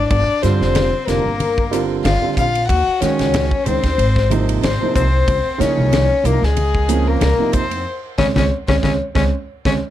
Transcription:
0.09 upright bass G1, tenor saxophone D4, violin D5, kick, ride
0.29 muted upright bass stroke
0.42 upright bass G2, grand piano D3 G3 C4 F4, tenor saxophone C4, violin C5, snare, hi-hat pedal, ride
0.61 upright bass F1, snare
0.75 snare, ride, muted conga, high conga
1.07 upright bass F1, grand piano D3 G3 C4 F4, tenor saxophone A#3, violin A#4, snare, hi-hat pedal, ride
1.24 upright bass G1, grand piano C4 G4
1.40 ride, muted conga, high conga
1.58 kick
1.71 grand piano D3 G3 C4 F4, hi-hat pedal, ride, muted conga
2.05 upright bass G1, tenor saxophone F4, violin F5, snare, ride, high conga
2.21 grand piano D3 G3 C4 F4, muted upright bass stroke
2.37 upright bass A#1, tenor saxophone F4, violin F5, kick, hi-hat pedal, ride
2.54 grand piano C4 D4, ride
2.68 upright bass D#2, tenor saxophone F#4, violin F#5, kick, ride, muted conga
2.88 muted upright bass stroke
3.00 grand piano D#3 G#3 C#4 F#4, upright bass D#3, tenor saxophone C#4, violin C#5, snare, hi-hat pedal, ride
3.19 upright bass C#2, snare, ride
3.34 snare, ride, muted conga, high conga, low conga
3.51 kick
3.66 upright bass C#2, grand piano D#3 G#3 C#4 D#4, tenor saxophone C4, violin C5, hi-hat pedal, ride, low conga
3.82 upright bass D#2, grand piano C#4 F#4, kick, snare, ride
3.98 upright bass G#1, ride, muted conga
4.16 kick, snare
4.30 grand piano C3 F3 A#3 D#4, hi-hat pedal, ride, muted conga, high conga
4.49 ride
4.63 upright bass G#1, tenor saxophone C4, violin C5, snare, ride, high conga
4.80 grand piano C3 F3 A#3 D#4, muted upright bass stroke
4.95 upright bass C2, tenor saxophone C4, violin C5, kick, hi-hat pedal, ride
5.12 grand piano A#3 D#4
5.27 upright bass C#2, kick, ride, muted conga
5.46 muted upright bass stroke
5.58 grand piano C#3 F3 A#3 D#4, upright bass C#3, tenor saxophone C#4, violin C#5, snare, hi-hat pedal, ride
5.77 upright bass C2
5.92 snare, ride, muted conga, high conga
6.23 upright bass C2, grand piano C3 F3 A#3 D#4, tenor saxophone A#3, violin A#4, hi-hat pedal, ride
6.41 upright bass C#2, tenor saxophone G#3, grand piano A#3 C#4, violin G#4, snare
6.57 ride, muted conga, high conga
6.75 kick
6.88 grand piano F3 A#3 C4 C#4, hi-hat pedal, ride, muted conga
7.07 tenor saxophone A#3, violin A#4
7.21 upright bass C#2, snare, ride, high conga
7.38 grand piano C3 F3 A#3 D#4, muted upright bass stroke
7.53 upright bass F2, tenor saxophone C4, violin C5, kick, hi-hat pedal, ride
7.70 grand piano A#3 D#4, ride
8.18 upright bass C#2, grand piano G#3 C4 C#4, tenor saxophone C#4, violin C#5, kick, snare, high conga
8.35 upright bass C#2, grand piano G#3 C4 C#4, tenor saxophone C#4, violin C#5, kick, snare, high conga
8.68 upright bass C#2, grand piano G#3 C4 C#4, tenor saxophone C#4, violin C#5, kick, snare, high conga
8.82 upright bass C#2, grand piano G#3 C4 C#4, tenor saxophone C#4, violin C#5, kick, snare, high conga
9.15 upright bass C#2, grand piano G#3 C4 C#4, tenor saxophone C#4, violin C#5, kick, snare, high conga
9.65 upright bass C#2, grand piano G#3 C4 C#4, tenor saxophone C#4, violin C#5, kick, snare, high conga

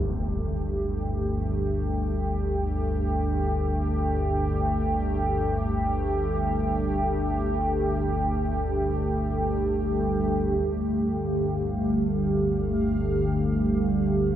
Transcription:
Already playing: synth drone G1 D2, analog synth pad G2 D3 A3 G4, impact
10.56 synth drone G1 D2, synth texture F5, impact

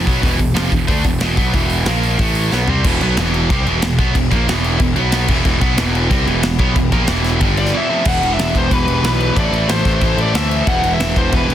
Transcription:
0.06 picked electric bass B1, distorted electric guitar B2 F#3 B3, kick, open hi-hat
0.22 picked electric bass E1, distorted electric guitar E2 B2 E3, kick, open hi-hat
0.38 picked electric bass E1, distorted electric guitar E2 B2, kick, open hi-hat
0.55 picked electric bass F1, distorted electric guitar F2 C3 F3, snare, open hi-hat
0.71 picked electric bass E1, distorted electric guitar E2 B2, kick, open hi-hat
0.88 picked electric bass D2, distorted electric guitar D3 A3 D4, kick, open hi-hat
1.04 picked electric bass E1, distorted electric guitar E2 B2, kick, open hi-hat
1.20 picked electric bass E1, distorted electric guitar E2 B2 E3, snare, open hi-hat
1.37 picked electric bass B1, distorted electric guitar B2 F#3 B3, kick, open hi-hat
1.54 picked electric bass E1, distorted electric guitar E2 B2 E3, kick, open hi-hat
1.70 open hi-hat
1.86 picked electric bass A#1, distorted electric guitar A#2 F3 A#3, snare, open hi-hat
2.03 open hi-hat
2.19 picked electric bass A1, distorted electric guitar A2 E3 A3, kick, open hi-hat
2.35 open hi-hat
2.52 picked electric bass B1, distorted electric guitar B2 F#3 B3, snare
2.68 picked electric bass C2, distorted electric guitar C3 G3 C4, floor tom
2.84 picked electric bass E1, distorted electric guitar E2 B2 E3, kick, crash
3.01 picked electric bass B1, distorted electric guitar B2 F#3 B3, crash
3.17 picked electric bass E1, distorted electric guitar E2 B2 E3, snare, crash
3.34 crash
3.50 picked electric bass C2, distorted electric guitar C3 G3 C4, kick, crash
3.65 picked electric bass E1, distorted electric guitar E2 B2 E3, crash
3.82 picked electric bass E1, distorted electric guitar E2 B2, snare, crash
3.99 picked electric bass B1, distorted electric guitar B2 F#3 B3, kick, crash
4.15 picked electric bass E1, distorted electric guitar E2 B2, kick, crash
4.31 picked electric bass A#1, distorted electric guitar A#2 F3 A#3, kick, crash
4.47 picked electric bass E1, distorted electric guitar E2 B2 E3, snare, crash
4.64 crash
4.79 picked electric bass E1, distorted electric guitar E2 B2, kick, crash
4.96 picked electric bass B1, distorted electric guitar B2 F#3 B3, crash
5.12 snare, crash
5.28 picked electric bass E1, distorted electric guitar E2 B2 E3, kick, crash
5.45 picked electric bass E1, distorted electric guitar E2 B2 E3, analog synth pad E3 B3 G4 B4, kick, crash
5.61 picked electric bass B1, distorted electric guitar B2 F#3 B3, kick, crash
5.77 picked electric bass E1, distorted electric guitar E2 B2 E3, snare, crash
5.95 crash
6.10 picked electric bass C2, distorted electric guitar C3 G3 C4, kick, crash
6.25 picked electric bass E1, distorted electric guitar E2 B2 E3, crash
6.43 picked electric bass E1, distorted electric guitar E2 B2, snare, crash
6.59 picked electric bass B1, distorted electric guitar B2 F#3 B3, kick, crash
6.75 picked electric bass E1, distorted electric guitar E2 B2, kick, crash
6.92 picked electric bass A#1, distorted electric guitar A#2 F3 A#3, kick, crash
7.07 picked electric bass E1, distorted electric guitar E2 B2 E3, snare, crash
7.24 snare, crash
7.40 picked electric bass G1, distorted electric guitar G2 D3 G3, kick, crash
7.57 lead electric guitar D5, crash
7.66 snare
7.73 distorted electric guitar E2 B2 E3
7.77 lead electric guitar E5
7.89 distorted electric guitar F2 C3 F3
8.04 picked electric bass E1, distorted electric guitar E2 B2 E3, analog synth pad E3 B3 G4 B4, kick, crash
8.09 lead electric guitar F#5
8.22 picked electric bass E1, crash
8.34 lead electric guitar E5
8.39 picked electric bass E1, snare, crash
8.55 picked electric bass E1, lead electric guitar C5, kick, crash
8.71 picked electric bass E1, lead electric guitar B4, kick, crash
8.87 picked electric bass E1, crash
9.02 picked electric bass B1, lead electric guitar B4, snare, crash
9.21 crash
9.34 picked electric bass A1, distorted electric guitar A2 E3 A3, analog synth pad C4 A4 C5, lead electric guitar D5, kick, crash
9.51 picked electric bass A1, crash
9.68 picked electric bass A1, lead electric guitar C5, snare, crash
9.85 picked electric bass A1, kick, snare, crash
10.01 picked electric bass A1, kick, crash
10.17 picked electric bass A1, lead electric guitar D5, crash
10.34 picked electric bass D2, lead electric guitar E5, snare, crash
10.51 crash
10.66 picked electric bass E1, distorted electric guitar E2 B2 E3, analog synth pad B3 G4 B4, lead electric guitar F#5, kick, crash
10.83 picked electric bass E1, crash
10.94 lead electric guitar E5
11.00 picked electric bass E1, snare, crash
11.16 picked electric bass E1, lead electric guitar C5, kick, crash
11.33 picked electric bass E1, lead electric guitar B4, kick, crash
11.48 picked electric bass E1, crash

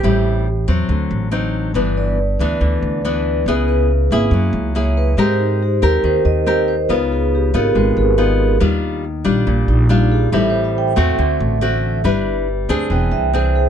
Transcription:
Already playing: hollow-body jazz guitar G4
0.03 upright bass A1, nylon-string guitar A2 G3 C4 E4
0.68 upright bass E2, nylon-string guitar F#3 C4
0.89 upright bass D2, nylon-string guitar D3
1.11 upright bass A1
1.31 nylon-string guitar F#3 C4 D#4
1.74 upright bass G1, nylon-string guitar G2 E3 B3 D4, vibraphone B4
1.97 vibraphone D5
2.39 upright bass D2, nylon-string guitar E3 B3 D4
2.61 upright bass D2, nylon-string guitar D3
2.82 upright bass D2
3.05 nylon-string guitar E3 B3 D4
3.46 upright bass C#2, nylon-string guitar C#3 B3 E4 G#4, vibraphone G#4
3.68 vibraphone B4
4.11 upright bass G#1, nylon-string guitar A#3 E4 G#4
4.31 upright bass F#2, nylon-string guitar F#3
4.53 upright bass C#2
4.75 nylon-string guitar A#3 E4 G#4, vibraphone C#5
4.97 vibraphone B4
5.17 upright bass G#2, nylon-string guitar G#3 C4 G4 A#4, vibraphone C5
5.40 vibraphone D#4
5.63 vibraphone G4
5.82 upright bass D#2, nylon-string guitar C4 G4 A#4, vibraphone A#4
6.04 upright bass D#2, nylon-string guitar D#3, vibraphone C5
6.25 upright bass D#2, vibraphone D#5
6.46 nylon-string guitar C4 G4 A#4
6.68 vibraphone C5
6.89 upright bass C#2, nylon-string guitar C#3 B3 D#4 F4, vibraphone B4
7.12 vibraphone G#4
7.35 vibraphone G4
7.54 upright bass G#1, nylon-string guitar B3 D#4 F4, vibraphone A#4
7.75 upright bass G#1, nylon-string guitar G#3, vibraphone B4
7.97 upright bass G#1, vibraphone G#4
8.18 nylon-string guitar B3 D#4 F4
8.60 upright bass D#2, nylon-string guitar D#3 G3 D4 F4
9.25 upright bass A#1, nylon-string guitar G3 D4 F4
9.47 upright bass A#1, nylon-string guitar A#2
9.68 upright bass A#1, vibraphone D#4
9.89 nylon-string guitar G3 D4 F4, vibraphone F4
10.12 vibraphone G#4
10.32 upright bass A1, nylon-string guitar A2 G3 C4 E4, vibraphone A4
10.50 vibraphone C5
10.64 vibraphone E5
10.78 vibraphone G5
10.96 upright bass E2, nylon-string guitar A3 C4 F#4, vibraphone E5
11.18 upright bass D2, nylon-string guitar D3
11.40 upright bass A1
11.61 nylon-string guitar A3 C4 F#4
12.04 upright bass G1, nylon-string guitar G3 D4 E4 B4
12.69 upright bass D2, nylon-string guitar C4 D4 G#4
12.90 upright bass E1, nylon-string guitar E3, vibraphone G5
13.11 upright bass C2, vibraphone E5
13.33 nylon-string guitar C4 D4 G#4, vibraphone C5
13.55 vibraphone G#4

